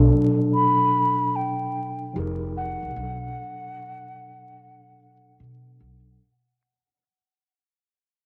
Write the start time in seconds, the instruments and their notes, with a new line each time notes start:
Already playing: tine electric piano B2 F#3 D4 A4
0.55 flute B5
1.36 flute G5
2.13 upright bass F1, tine electric piano F3 D#4 G4
2.18 tine electric piano G#4 A#4
2.57 flute F#5
2.83 upright bass C2
2.91 tine electric piano B2
2.96 upright bass B1, tine electric piano F#3 D4
3.03 tine electric piano A4
5.40 upright bass B2
5.80 upright bass B1